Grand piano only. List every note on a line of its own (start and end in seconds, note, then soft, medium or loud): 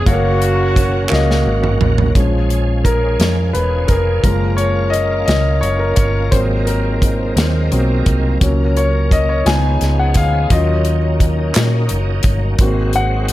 0.06 0.13 A3 medium
0.06 0.96 F#4 medium
0.06 0.96 C#5 medium
0.06 0.96 F5 medium
0.13 0.99 A#3 medium
1.09 1.99 A#3 medium
1.09 2.00 F#4 medium
1.09 2.01 D#5 medium
1.09 1.99 F5 medium
2.15 4.20 F3 soft
2.15 4.20 G#3 soft
2.15 4.20 C#4 soft
2.84 3.56 A#4 medium
3.53 3.89 B4 medium
3.88 4.22 A#4 medium
4.23 5.24 F3 soft
4.23 5.24 G#3 soft
4.23 5.25 A#3 medium
4.23 4.56 A#4 medium
4.56 4.93 C#5 medium
4.90 4.98 D#5 medium
5.26 5.63 D#5 medium
5.61 5.78 C#5 medium
5.79 5.98 A#4 medium
5.96 6.33 C#5 medium
6.31 6.78 F#3 soft
6.31 6.79 A#3 soft
6.31 6.79 C4 medium
6.31 6.39 C5 medium
6.66 7.67 A#4 medium
7.71 8.03 F#3 soft
7.71 8.03 A#3 soft
7.71 8.03 C4 medium
8.40 8.87 F#3 soft
8.40 8.87 A#3 soft
8.40 8.88 C#4 medium
8.77 9.12 C#5 medium
9.12 9.17 D#5 medium
9.29 9.47 C#5 medium
9.45 9.92 F3 soft
9.45 9.92 B3 soft
9.45 9.92 D#4 medium
9.45 10.00 G#5 medium
9.99 10.17 F#5 medium
10.17 10.49 F5 medium
10.51 10.97 F#3 soft
10.51 10.97 C#4 soft
10.51 10.97 F4 medium
10.51 11.51 D#5 medium
12.60 13.32 A#3 soft
12.60 13.32 C4 soft
12.60 13.32 F#4 medium
12.96 13.31 F#5 medium